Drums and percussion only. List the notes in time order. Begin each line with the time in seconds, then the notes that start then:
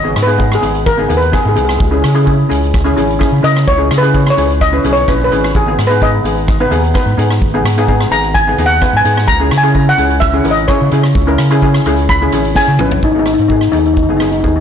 0.16 cross-stick, closed hi-hat
0.29 closed hi-hat
0.40 kick, closed hi-hat
0.52 cross-stick
0.63 closed hi-hat
0.75 closed hi-hat
0.86 kick, cross-stick, closed hi-hat
1.10 closed hi-hat
1.22 closed hi-hat
1.33 kick, cross-stick, closed hi-hat
1.56 closed hi-hat
1.69 cross-stick, closed hi-hat
1.80 kick, closed hi-hat
2.04 cross-stick, closed hi-hat
2.16 closed hi-hat
2.27 kick, closed hi-hat
2.51 closed hi-hat
2.63 closed hi-hat
2.74 kick, cross-stick, closed hi-hat
2.97 closed hi-hat
3.10 closed hi-hat
3.21 kick, cross-stick, closed hi-hat
3.44 closed hi-hat
3.56 cross-stick, closed hi-hat
3.68 kick, closed hi-hat
3.91 cross-stick, closed hi-hat
4.04 closed hi-hat
4.15 kick, closed hi-hat
4.27 cross-stick
4.38 closed hi-hat
4.50 closed hi-hat
4.61 kick, cross-stick, closed hi-hat
4.84 closed hi-hat
4.97 closed hi-hat
5.08 kick, cross-stick, closed hi-hat
5.32 closed hi-hat
5.44 cross-stick, closed hi-hat
5.55 kick, closed hi-hat
5.79 cross-stick, closed hi-hat
5.91 closed hi-hat
6.02 kick, closed hi-hat
6.25 closed hi-hat
6.38 closed hi-hat
6.48 kick, cross-stick, closed hi-hat
6.72 closed hi-hat
6.84 closed hi-hat
6.95 kick, cross-stick, closed hi-hat
7.19 closed hi-hat
7.31 cross-stick, closed hi-hat
7.42 kick, closed hi-hat
7.66 cross-stick, closed hi-hat
7.78 closed hi-hat
7.88 kick, closed hi-hat
8.00 cross-stick
8.12 closed hi-hat
8.24 closed hi-hat
8.35 kick, cross-stick, closed hi-hat
8.58 closed hi-hat
8.70 closed hi-hat
8.82 kick, cross-stick, closed hi-hat
9.05 closed hi-hat
9.17 cross-stick, closed hi-hat
9.28 kick, closed hi-hat
9.51 cross-stick, closed hi-hat
9.64 closed hi-hat
9.75 kick, closed hi-hat
9.98 closed hi-hat
10.10 closed hi-hat
10.22 kick, cross-stick, closed hi-hat
10.45 closed hi-hat
10.57 closed hi-hat
10.68 kick, cross-stick, closed hi-hat
10.92 closed hi-hat
11.03 cross-stick, closed hi-hat
11.15 kick, closed hi-hat
11.38 cross-stick, closed hi-hat
11.51 closed hi-hat
11.62 kick, closed hi-hat
11.74 cross-stick
11.86 closed hi-hat
11.98 closed hi-hat
12.09 kick, cross-stick, closed hi-hat
12.32 closed hi-hat
12.45 closed hi-hat
12.55 kick, snare
12.79 mid tom
12.91 floor tom
13.02 kick, closed hi-hat
13.26 cross-stick, closed hi-hat
13.38 closed hi-hat
13.49 kick, closed hi-hat
13.61 cross-stick
13.73 closed hi-hat
13.86 closed hi-hat
13.97 kick, closed hi-hat
14.20 cross-stick, closed hi-hat
14.32 closed hi-hat
14.44 kick, closed hi-hat